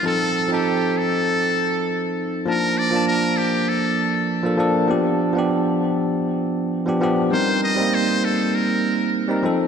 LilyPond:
<<
  \new Staff \with { instrumentName = "Muted trumpet" } { \time 4/4 \key bes \major \tempo 4 = 99 a'8. g'8. a'2 r8 | bes'8 d''8 bes'8 g'8 a'4 r4 | r1 | c''8 ees''8 c''8 a'8 bes'4 r4 | }
  \new Staff \with { instrumentName = "Tine electric piano" } { \time 4/4 \key bes \major <f c' ees' a'>8. <f c' ees' a'>2.~ <f c' ees' a'>16 | <f bes d' a''>8. <f bes d' a''>2~ <f bes d' a''>8 <f bes d' a'>16 <f bes d' a'>8 | <f b d' g'>8. <f b d' g'>2~ <f b d' g'>8 <f b d' g'>16 <f b d' g'>8 | <g c' ees' bes'>8. <g bes c' ees'>2~ <g bes c' ees'>8 <g c' ees' bes'>16 <f c' ees' a'>8 | }
>>